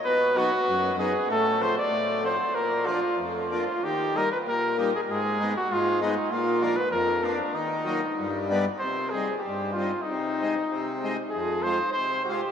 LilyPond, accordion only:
\new Staff \with { instrumentName = "Accordion" } { \clef bass \time 2/4 \key ees \minor \tempo 4 = 96 << { r8 <fis b dis'>8 r8 <fis b dis'>8 | r8 <f a c'>8 r8 <f a c'>8 | r8 <f bes d'>8 r8 <f bes d'>8 | r8 <g bes ees'>8 r8 <g bes ees'>8 |
r8 <aes ces' ees'>8 r8 <aes ces' ees'>8 | r8 <f bes d'>8 r8 <f bes d'>8 | r8 <ges bes ees'>8 r8 <g b d'>8 | \key c \minor r8 <g c' ees'>8 r8 <g c' ees'>8 |
r8 <aes c' ees'>8 r8 <aes c' ees'>8 | r8 <aes c' f'>8 r8 <aes c' f'>8 | } \\ { b,4 fis,4 | a,4 a,4 | bes,4 f,4 | ees4 bes,4 |
aes,4 aes,4 | bes,4 f,4 | ees4 g,4 | c4 g,4 |
c4 c4 | f,4 c4 | } >> }